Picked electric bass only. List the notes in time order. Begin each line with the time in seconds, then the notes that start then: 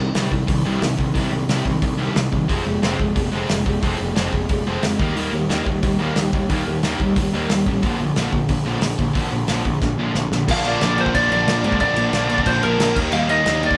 0.00 C2
0.15 C2
0.31 C2
0.49 C2
0.66 C2
0.81 C2
0.99 C2
1.15 C2
1.32 C2
1.48 C2
1.65 C2
1.82 C2
1.98 C2
2.16 C2
2.33 C2
2.50 F1
2.67 F1
2.82 F1
3.00 F1
3.16 F1
3.33 F1
3.51 F1
3.66 F1
3.83 F1
4.01 F1
4.17 F1
4.33 F1
4.50 F1
4.66 F1
4.84 F2
4.99 D#2
5.16 D#2
5.33 D#2
5.50 D#2
5.66 D#2
5.84 D#2
6.00 D#2
6.17 D#2
6.33 D#2
6.50 D#2
6.68 D#2
6.84 D#2
7.00 D#2
7.16 D#2
7.34 D#2
7.51 D#2
7.66 A1
7.83 A#1
8.00 A#1
8.17 A#1
8.33 A#1
8.49 A#1
8.65 A#1
8.81 A#1
8.99 A#1
9.15 A#1
9.32 A#1
9.50 A#1
9.66 A#1
9.82 A#1
9.98 A#1
10.15 A#1
10.32 A#1
10.48 A#1
10.82 A#1
11.15 A#1
11.31 A#1
11.48 A#1
11.64 G#2
11.81 A#1
12.13 A#1
12.46 A#1
12.63 A#1
12.79 A#1
12.96 D#2
13.13 D#2
13.46 D#2